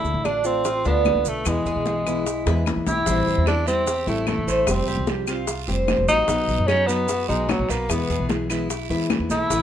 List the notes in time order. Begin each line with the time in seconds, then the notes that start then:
Already playing: D3 A3 D4 E4
0.04 D2, high bongo, high conga, maracas
0.14 A1
0.25 D3 A3 D4 F4, high bongo, high conga, claves, maracas
0.44 A3 C4 D4 F4, high bongo, high conga, maracas
0.65 F4, muted nylon-string guitar stroke, high bongo, high conga, maracas
0.85 D2 A3 B3 D4 F4, high bongo, high conga, maracas
1.05 D3 A3 D4 F4, high bongo, low bongo, high conga, claves, maracas
1.15 D2
1.25 B1 A3 B4, high conga, maracas
1.46 E2 B2 E3 G#3 B3 E4, high bongo, high conga, claves, maracas
1.66 E2 G#4, high bongo, high conga, maracas
1.76 B1
1.86 E3 G#3 B3 E4, high bongo, high conga, maracas
2.06 E3 G#3 B3 E4, high bongo, high conga, claves, maracas
2.26 muted nylon-string guitar stroke, high bongo, high conga, maracas
2.46 E2 E3 G#3 B3 E4 B4, high bongo, high conga, maracas
2.66 E3 G#3 B3 E4, low bongo, high conga, claves, maracas
2.77 E2
2.87 B1 E4 G4, low bongo, high conga, maracas
3.06 A1 E3 G3 C4 E4, high bongo, long guiro, maracas
3.27 A1, high bongo, high conga, maracas
3.38 E2
3.46 E3 G3 C4 D4 E4, high bongo, high conga, short guiro, claves, maracas
3.66 G3 C4 E4, high bongo, high conga, short guiro, maracas
3.87 G4, muted nylon-string guitar stroke, high bongo, high conga, long guiro, maracas
4.07 A1 G3 A3 C4 E4, high bongo, high conga, maracas
4.27 E3 G3 A3 C4 E4, high bongo, low bongo, high conga, short guiro, claves, maracas
4.37 A1
4.47 A1 C5, high conga, short guiro, maracas
4.67 F1 F3 G3 C4 G4, high bongo, high conga, long guiro, claves, maracas
4.87 F1 G4, high bongo, high conga, maracas
4.97 C2
5.07 F3 G3 C4 G4, high bongo, high conga, short guiro, maracas
5.27 G3 C4 F4 G4, high bongo, high conga, short guiro, claves, maracas
5.47 muted nylon-string guitar stroke, high bongo, high conga, long guiro, maracas
5.68 F1 G3 C4 G4 C5, high bongo, high conga, maracas
5.88 F3 G3 C4 G4, high bongo, low bongo, high conga, short guiro, claves, maracas
5.98 F1
6.08 A1 D#4 F#4, high conga, short guiro, maracas
6.28 B1 B2 F#3 B3 D#4 F#4, high bongo, long guiro, maracas
6.48 B1, high bongo, high conga, maracas
6.59 F#2
6.67 F#3 B3 C#4 D#4 F#4, high bongo, high conga, short guiro, claves, maracas
6.87 F#3 B3 D#4 F#4, high bongo, high conga, short guiro, maracas
7.08 F#4, muted nylon-string guitar stroke, high bongo, high conga, long guiro, maracas
7.28 B1 F#3 G#3 B3 D#4 F#4, high bongo, high conga, maracas
7.49 F#3 B3 D#4 F#4, high bongo, low bongo, high conga, short guiro, claves, maracas
7.59 B1
7.69 B1 A#3 B4, high conga, short guiro, maracas
7.89 E2 B2 E3 G#3 B3 E4, high bongo, high conga, long guiro, claves, maracas
8.10 E2 G#4, high bongo, high conga, maracas
8.19 B1
8.29 E3 G#3 B3 E4, high bongo, high conga, short guiro, maracas
8.50 E3 G#3 B3 E4, high bongo, high conga, short guiro, claves, maracas
8.70 muted nylon-string guitar stroke, high bongo, high conga, long guiro, maracas
8.90 E2 E3 G#3 B3 E4 B4, high bongo, high conga, maracas
9.10 E3 G#3 B3 E4, high bongo, low bongo, high conga, short guiro, claves, maracas
9.20 E2
9.30 B1 E4 A4, high conga, short guiro, maracas
9.50 A1 C3 E3 A3 B3 E4, high bongo, long guiro, maracas